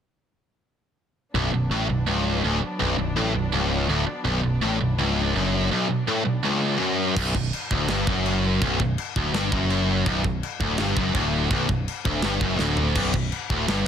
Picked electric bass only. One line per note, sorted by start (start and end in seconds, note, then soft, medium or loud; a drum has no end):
1.35 1.51 B0 medium
1.51 1.69 B0 medium
1.71 1.88 A1 medium
1.89 2.06 B0 medium
2.07 2.41 C#1 medium
2.44 2.61 D1 medium
2.64 muted picked electric bass stroke soft
2.82 2.98 B0 medium
2.98 3.15 B0 medium
3.17 3.33 A1 medium
3.34 3.52 B0 medium
3.52 3.86 C#1 medium
3.88 4.06 D1 medium
4.07 muted picked electric bass stroke soft
4.25 4.42 B0 loud
4.44 4.61 B0 medium
4.63 4.80 A1 medium
4.81 4.98 B0 medium
4.99 5.32 C#1 medium
5.35 5.69 F#1 loud
7.16 7.33 B0 loud
7.35 7.51 B0 medium
7.71 7.88 D1 loud
7.89 8.06 G1 loud
8.07 8.57 F#1 medium
8.62 8.78 B0 loud
8.80 8.96 B0 medium
9.16 9.32 D1 medium
9.33 9.50 G1 loud
9.52 10.02 F#1 loud
10.06 10.23 B0 loud
10.24 10.41 B0 medium
10.60 10.77 D1 medium
10.79 10.96 G1 medium
10.96 11.13 F#1 medium
11.14 11.48 D1 loud
11.50 11.67 B0 loud
11.68 11.85 B0 medium
12.05 12.22 D1 medium
12.24 12.40 G1 medium
12.41 12.58 F#1 medium
12.59 12.93 D1 loud
12.96 13.12 B0 loud
13.13 13.30 B0 medium
13.50 13.67 D1 medium
13.68 13.84 G1 loud